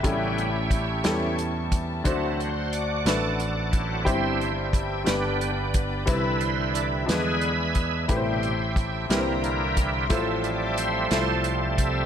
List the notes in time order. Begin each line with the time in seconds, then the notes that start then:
Already playing: E5 G5
0.03 A1 A2 C#3 G3 B3 C#4 E4 A4 A5 C#6, kick, closed hi-hat
0.07 E4 G4
0.38 closed hi-hat
0.71 kick, closed hi-hat
1.04 E2 G3 B3 E4 A4, snare, closed hi-hat
1.11 C#4
1.38 closed hi-hat
1.72 kick, closed hi-hat
2.04 D2 D3 E3 F#3 A3 C4 D4 F#4 A4 C5 D5 F#5, kick, closed hi-hat
2.40 C5, closed hi-hat
2.73 D5, closed hi-hat
3.05 A1 A3 D4 F#4 A4 B4 D5, snare, closed hi-hat
3.39 closed hi-hat
3.71 E3 F#3 C4, kick, closed hi-hat
4.03 G1 G2 E3 G3 C4 E4 G4 C5 E5 G5, kick, closed hi-hat
4.41 closed hi-hat
4.73 kick, closed hi-hat
5.04 G1 G2 D3 G3 B3 D4 G4 B4 D5 B5, snare, closed hi-hat
5.41 closed hi-hat
5.74 kick, closed hi-hat
6.06 C2 C3 D3 E3 G3 C4 E4 A4 B4 E5, kick, closed hi-hat
6.40 C5, closed hi-hat
6.74 D5, closed hi-hat
7.05 E2 D3 E3 F3 G#3 B3 D4 E4 G#4 B4 D5 E5 G#5 B5, closed hi-hat
7.10 G#3, snare
7.41 closed hi-hat
7.75 kick, closed hi-hat
8.08 A1 A2 B2 C3 G3 A3 E4 G4 B4 C5 G5 A5 C6, kick, closed hi-hat
8.16 C5
8.43 closed hi-hat
8.76 kick, closed hi-hat
9.09 C2 C3 D3 E3 A#3 E4 G4 A#4 B4 A#5, snare, closed hi-hat
9.18 C5
9.44 closed hi-hat
9.77 kick, closed hi-hat
10.09 A1 A2 F3 G3 A3 C4 E4 F4 A4 C5 E5 A5, kick, closed hi-hat
10.44 D5, closed hi-hat
10.77 C5, closed hi-hat
11.10 C2 A3 C4 E4 F4 A4 C5, snare, closed hi-hat
11.44 closed hi-hat
11.78 C3 G3 A3 E5, kick, closed hi-hat